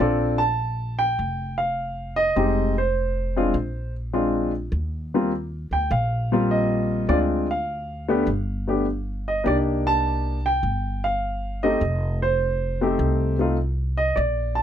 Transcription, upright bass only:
0, 0, Header, 1, 2, 480
1, 0, Start_track
1, 0, Time_signature, 4, 2, 24, 8
1, 0, Key_signature, -2, "major"
1, 0, Tempo, 589971
1, 11900, End_track
2, 0, Start_track
2, 0, Title_t, "Upright bass"
2, 0, Program_c, 0, 32
2, 0, Note_on_c, 0, 34, 78
2, 928, Note_off_c, 0, 34, 0
2, 966, Note_on_c, 0, 29, 74
2, 1893, Note_off_c, 0, 29, 0
2, 1923, Note_on_c, 0, 29, 79
2, 2853, Note_off_c, 0, 29, 0
2, 2880, Note_on_c, 0, 34, 80
2, 3812, Note_off_c, 0, 34, 0
2, 3839, Note_on_c, 0, 39, 78
2, 4623, Note_off_c, 0, 39, 0
2, 4647, Note_on_c, 0, 38, 63
2, 4791, Note_off_c, 0, 38, 0
2, 4805, Note_on_c, 0, 34, 85
2, 5735, Note_off_c, 0, 34, 0
2, 5766, Note_on_c, 0, 38, 77
2, 6696, Note_off_c, 0, 38, 0
2, 6727, Note_on_c, 0, 31, 83
2, 7655, Note_off_c, 0, 31, 0
2, 7694, Note_on_c, 0, 36, 80
2, 8619, Note_off_c, 0, 36, 0
2, 8648, Note_on_c, 0, 31, 81
2, 9575, Note_off_c, 0, 31, 0
2, 9610, Note_on_c, 0, 29, 83
2, 10534, Note_off_c, 0, 29, 0
2, 10569, Note_on_c, 0, 36, 88
2, 11492, Note_off_c, 0, 36, 0
2, 11530, Note_on_c, 0, 34, 85
2, 11900, Note_off_c, 0, 34, 0
2, 11900, End_track
0, 0, End_of_file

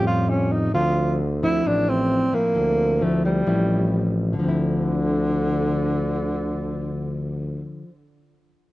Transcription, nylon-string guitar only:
0, 0, Header, 1, 2, 480
1, 0, Start_track
1, 0, Key_signature, -1, "minor"
1, 0, Tempo, 454545
1, 782, Time_signature, 4, 2, 24, 8
1, 9215, End_track
2, 0, Start_track
2, 0, Title_t, "Nylon-string guitar"
2, 0, Program_c, 0, 24
2, 0, Note_on_c, 0, 45, 61
2, 0, Note_on_c, 0, 55, 57
2, 0, Note_on_c, 0, 61, 62
2, 0, Note_on_c, 0, 65, 64
2, 746, Note_off_c, 0, 55, 0
2, 749, Note_off_c, 0, 61, 0
2, 750, Note_off_c, 0, 65, 0
2, 761, Note_off_c, 0, 45, 0
2, 787, Note_on_c, 0, 50, 53
2, 790, Note_on_c, 0, 53, 47
2, 793, Note_on_c, 0, 60, 46
2, 1264, Note_off_c, 0, 53, 0
2, 1265, Note_off_c, 0, 60, 0
2, 1508, Note_on_c, 0, 53, 64
2, 1514, Note_on_c, 0, 60, 65
2, 1516, Note_on_c, 0, 64, 68
2, 1722, Note_off_c, 0, 50, 0
2, 1736, Note_on_c, 0, 45, 58
2, 2428, Note_off_c, 0, 53, 0
2, 2430, Note_off_c, 0, 60, 0
2, 2430, Note_off_c, 0, 64, 0
2, 2453, Note_on_c, 0, 53, 58
2, 2460, Note_on_c, 0, 60, 57
2, 2464, Note_on_c, 0, 64, 59
2, 2676, Note_off_c, 0, 45, 0
2, 2693, Note_on_c, 0, 50, 49
2, 3141, Note_off_c, 0, 53, 0
2, 3142, Note_off_c, 0, 60, 0
2, 3146, Note_off_c, 0, 64, 0
2, 3180, Note_on_c, 0, 53, 61
2, 3186, Note_on_c, 0, 60, 53
2, 3191, Note_on_c, 0, 64, 57
2, 3624, Note_off_c, 0, 53, 0
2, 3627, Note_off_c, 0, 60, 0
2, 3628, Note_off_c, 0, 64, 0
2, 3635, Note_off_c, 0, 50, 0
2, 3659, Note_on_c, 0, 45, 56
2, 3664, Note_on_c, 0, 53, 62
2, 3666, Note_on_c, 0, 60, 60
2, 3670, Note_on_c, 0, 64, 59
2, 4574, Note_on_c, 0, 50, 59
2, 4585, Note_off_c, 0, 53, 0
2, 4587, Note_off_c, 0, 60, 0
2, 4589, Note_off_c, 0, 64, 0
2, 4598, Note_off_c, 0, 45, 0
2, 4638, Note_on_c, 0, 53, 60
2, 4686, Note_on_c, 0, 60, 61
2, 4735, Note_on_c, 0, 64, 61
2, 8270, Note_off_c, 0, 50, 0
2, 8334, Note_off_c, 0, 53, 0
2, 8382, Note_off_c, 0, 60, 0
2, 8431, Note_off_c, 0, 64, 0
2, 9215, End_track
0, 0, End_of_file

